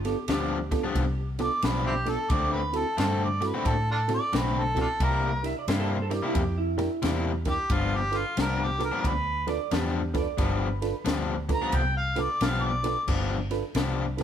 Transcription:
Already playing: G1
0.05 B3 D4 F4 G4 A4, snare, ride
0.28 D2 G2 F3 B3 D4 G4, snare, ride
0.71 B3 D4 F4 A4, muted overdriven electric guitar stroke, kick, snare, ride
0.84 G2 F3 B3 D4
0.95 C2, kick, ride
1.39 B3 D4 F4 A4 D5, muted overdriven electric guitar stroke, snare, ride
1.62 B1 G2 F3 B3 D4 B4, snare, ride
1.86 C4 E4 G4
2.06 B3 D4 F4 A4, muted overdriven electric guitar stroke, snare, ride
2.30 D2 D3 A3 C4 F#4 D5, kick, ride
2.52 B4
2.73 C4 E4 F#4 A4, snare, ride
2.97 G2 D3 A3 C4 D4 F4 F#4 A4, snare, ride
3.23 D5
3.41 C4 E4 F#4 A4, muted overdriven electric guitar stroke, snare, ride
3.46 B4
3.54 D3 A3 C4 F#4
3.65 A2 A4, kick, ride
3.91 D4 F4 A4
4.08 C4 E4 F#4 A4, muted overdriven electric guitar stroke, snare, ride
4.14 D5
4.33 B1 D3 A3 C4 F#4 B4, snare, ride
4.60 A4
4.75 C4 E4 F#4 A4, muted overdriven electric guitar stroke, kick, snare, ride
4.81 D4 F4 A4
5.00 C2 C3 G3 A#3 E4 A#4, kick, ride
5.43 D4 E4 G4 A#4 E5, snare, ride
5.59 D5
5.68 G2 C3 G3 A#3 E4 C5, snare, ride
5.80 A4
5.90 C5
6.02 A4
6.09 D4 E4 G4 A#4, muted overdriven electric guitar stroke, snare, ride
6.14 G4
6.23 C3 G3 A#3 E4
6.35 F2 G4, kick, ride
6.58 E4
6.77 D4 E4 G4 A#4, muted overdriven electric guitar stroke, snare, ride
7.02 E2 C3 G3 A#3 E4, snare, ride
7.45 D4 E4 G4 A#4, muted overdriven electric guitar stroke, kick, snare, ride
7.50 G4
7.70 G1 G2 F3 B3 D4 F4, kick, ride
7.96 G4
8.11 D4 F4 A4 B4, snare, ride
8.17 F4
8.37 C2 G2 F3 B3 D4, snare, ride
8.41 A#4
8.63 G4
8.78 D4 F4 A4 B4, muted overdriven electric guitar stroke, snare, ride
8.85 A#4
8.92 G2 F3 B3 D4
9.04 D2 B4, kick, ride
9.47 D4 F4 A4 B4 D5, muted overdriven electric guitar stroke, snare, ride
9.71 E2 G2 F3 B3 D4 G4, snare, ride
10.14 D4 F4 A4 B4, muted overdriven electric guitar stroke, kick, snare, ride
10.19 D5
10.38 G1 G2 F3 B3 D4, kick, snare, ride
10.42 B4
10.82 D4 F4 A4 B4, snare, ride
11.05 D2 G2 F3 B3 D4, snare, ride
11.49 D4 F4 A4 B4, muted overdriven electric guitar stroke, kick, snare, ride
11.54 A#5
11.62 G2 F3 B3 D4
11.72 C2 G5, kick, ride
11.97 F5
12.16 D4 F4 A4 B4, muted overdriven electric guitar stroke, snare, ride
12.20 D5
12.41 B1 G2 F3 B3 D4 F5, snare, ride
12.62 D5
12.83 D4 F4 A4 B4, muted overdriven electric guitar stroke, snare, ride
13.08 G1 G2 F3 B3 D4, kick, crash
13.51 D4 F4 A4 B4, snare, ride
13.75 C2 G2 F3 B3 D4, snare, ride
14.17 D4 F4 A4 B4, muted overdriven electric guitar stroke, snare, ride

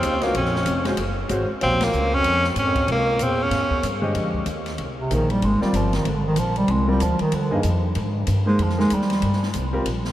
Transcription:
Already playing: D#2 C4
0.03 C#2, hi-hat pedal, ride
0.21 C#2 A#3 C#4 F#4 C5 F5, snare, ride
0.34 A#1 F2 C#4, ride
0.45 snare
0.56 snare
0.66 F1, hi-hat pedal, ride
0.84 G#3 C#4 F#4 C5, snare, ride
0.97 F#1, ride
1.29 G#1 G#3 C#4 F#4 C5, hi-hat pedal, ride
1.50 muted upright bass stroke
1.61 A#1 D#2 C4 C#4 F#4 C5 F5, ride
1.80 C#2 A#3, snare, ride
1.92 C#2, hi-hat pedal
2.13 F2 C#4
2.24 F2, ride
2.44 snare
2.56 F2 G#2 C#4, hi-hat pedal, ride
2.75 kick, ride
2.88 C#2 C3, ride
2.92 A#3
3.19 A#2, hi-hat pedal, ride
3.23 E2 C4
3.42 E2 C#4
3.51 G#2, snare, ride
3.71 muted upright bass stroke, kick
3.83 G2, hi-hat pedal, ride
4.01 D3 G#3 G4 C5 D#5
4.15 F2, ride
4.34 kick
4.46 D#2, hi-hat pedal, ride
4.66 snare, ride
4.78 C2, ride
4.99 C3
5.10 A#1 D#3 A#3 D#4 G#4 C5, hi-hat pedal, ride
5.30 G3, ride
5.42 G#1 G#3, ride
5.61 G3 C4 F4 A#4 D5, muted upright bass stroke, snare
5.73 G1 F3, hi-hat pedal, ride
5.93 D#3, snare, ride
6.05 G#1 D3, ride
6.27 D#3
6.36 A#1 F3, hi-hat pedal, ride
6.56 G3, ride
6.68 C2 G#3, ride
6.88 G3 C4 F4 A#4 D5
7.00 D2 F3, hi-hat pedal, ride
7.19 D#3, muted upright bass stroke, ride
7.32 D#2 D3, ride
7.51 G2 A#3 D#4 G#4 D#5
7.63 F2, hi-hat pedal, ride
7.95 G#2, ride
8.27 G2, hi-hat pedal, ride
8.46 G#3 A#3 D#4 G#4 C5
8.59 F2, ride
8.63 F3
8.69 snare
8.77 G#3 A#3 D#4 G#4 A#4, snare
8.90 D#2, hi-hat pedal, ride
8.95 G3
9.01 snare
9.10 snare, ride
9.22 G2, ride
9.33 snare
9.43 snare
9.53 C2, hi-hat pedal, ride
9.73 G3 C4 F4 A#4
9.85 A#1, ride
10.05 snare

